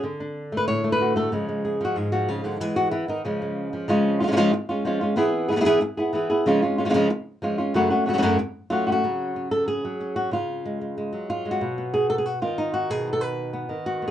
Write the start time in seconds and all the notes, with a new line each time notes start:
0.03 D3
0.20 D4
0.52 A3
0.57 B4
0.68 A2 C#5
0.84 A3
0.92 B4
1.01 F#4
1.16 A3 A4
1.32 C#3 F3 G#3 G#4
1.49 G#3
1.65 G#4
1.81 F3 F#4
1.96 G#2 G#4
2.12 F3 F#4
2.28 C#3 F4
2.44 D3 F#4
2.60 E3 G#3 B3 G#4
2.76 F#4
2.91 E3 E4
3.08 D#3 D#4
3.25 C#3 F3 G#3 C#4
3.42 G#3
3.73 F3
3.88 C#3 F3 G#3 C#4 F4
4.20 F3 G#3 C#4 F4
4.28 F3 G#3 C#4 F4
4.32 F3 G#3 C#4 F4
4.37 C#3 F3 G#3 C#4 F4
4.53 muted nylon-string guitar stroke
4.69 G#3 C#4 F4
4.85 F3 G#3 C#4 F4
5.01 G#3 C#4 F4
5.16 E3 B3 E4 G#4
5.49 E3 B3 E4 G#4
5.53 E3 B3 G#4
5.57 E3 B3 E4 G#4
5.61 E3 E4 G#4
5.65 B3 E4 G#4
5.81 muted nylon-string guitar stroke
5.97 B3 E4 G#4
6.13 E3 B3 E4 G#4
6.30 B3 E4 G#4
6.46 C#3 F3 G#3 C#4 F4
6.62 G#3 C#4 F4
6.78 G#3 C#4 F4
6.85 F3 G#3 C#4 F4
6.90 F3 G#3 C#4 F4
6.94 C#3 F3 G#3 C#4 F4
7.10 muted nylon-string guitar stroke
7.42 F3 G#3 C#4 F4
7.58 G#3 C#4 F4
7.74 F#2 C#3 F#3 A3 C#4 F#4
7.90 F#3 A3 C#4 F#4
8.06 C#3 F#3 A3 C#4 F#4
8.13 C#3 F#3 A3 C#4 F#4
8.18 C#3 F#3 A3 C#4 F#4
8.22 F#2 C#3 F#3 A3 C#4 F#4
8.38 muted nylon-string guitar stroke
8.70 F#3 A3 C#4 F4 F#4
8.87 F#3 A3 C#4 F#4
8.92 F#4
9.04 C#3 F#3 C#4
9.36 C#4
9.51 A4
9.67 G#4
9.84 F#3
10.00 C#4
10.16 F#4
10.31 C#3 F4
10.65 G#3
10.81 G#3
10.98 G#3
11.13 F#3
11.30 F4
11.45 G#3
11.51 F#4
11.61 B2
11.78 B3
11.94 G#4
12.10 A4
12.18 G#4
12.26 F#4
12.42 D#3 F4
12.58 D#4
12.74 F#4
12.90 B2 G#4
13.07 B3
13.13 A4
13.21 B4
13.54 B3
13.69 D#3
13.86 F#4
14.02 B3